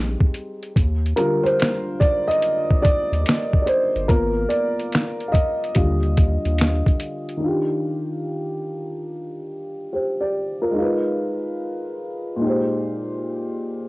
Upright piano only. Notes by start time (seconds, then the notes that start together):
Already playing: G3 G#3 C4 D#4
1.16 D3 G3 F4 A#4
1.43 C5
2.00 D5
2.28 D#5
2.82 D5
3.62 D5
3.66 C5
4.08 A#3 B3 F4 A#4
4.49 D5
5.28 D#5 F5
5.75 D3 G3 F4
7.37 D#3 D4
7.44 F4 G4
9.93 G4 C5
10.21 G4 D5
10.62 F4 A#4
10.71 G#3 D#4
10.78 F4 B4
12.36 A#2 G#3
12.41 D#4 G4
12.47 C5